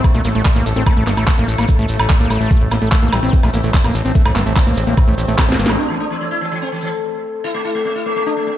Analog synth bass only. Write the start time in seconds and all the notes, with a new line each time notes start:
0.15 A#1
0.25 A1
0.35 A1
0.56 A1
0.66 A1
0.76 A1
0.97 A1
1.07 G1
1.17 A1
1.38 A1
1.48 A1
1.58 A1
1.79 A1
1.89 A1
1.99 A1
2.20 A1
2.30 A1
2.41 A1
2.61 A1
2.71 A1
2.82 A1
3.02 A1
3.13 A1
3.23 A1
3.43 A#1
3.54 A1
3.64 A1
3.84 A1
3.95 A1
4.05 A1
4.26 A1
4.36 G1
4.46 A1
4.67 A1
4.77 A1
4.87 A1
5.08 A1
5.18 A1
5.28 A1
5.49 A1
5.59 G1
5.69 A1